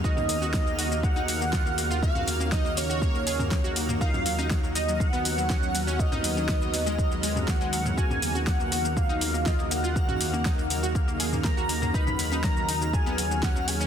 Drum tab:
HH |--o---o---o---o-|--o---o---o---o-|--o---o---o---o-|--o---o---o---o-|
SH |xxxxxxxxxxxxxxxx|xxxxxxxxxxxxxxxx|xxxxxxxxxxxxxxxx|xxxxxxxxxxxxxxxx|
SD |----o-------o---|----o-------o---|----o-------o---|----o-------o---|
T2 |-o--------------|-o---------o---o|-o--------------|-o---------o---o|
CG |-o-o------------|-o-o-------o----|-o-o------------|-o-o-------o----|
BD |o---o---o---o---|o---o---o---o---|o---o---o---o---|o---o---o---o---|

HH |--o---o---o---o-|--o---o---o---o-|--o---o---o---o-|
SH |xxxxxxxxxxxxxxxx|xxxxxxxxxxxxxxxx|xxxxxxxxxxxxxxxx|
SD |----o-------o---|----o-------o---|----o-------o---|
T2 |-o--------------|-o---------o---o|-o--------------|
CG |-o-o------------|-o-o-------o----|-o-o------------|
BD |o---o---o---o---|o---o---o---o---|o---o---o---o---|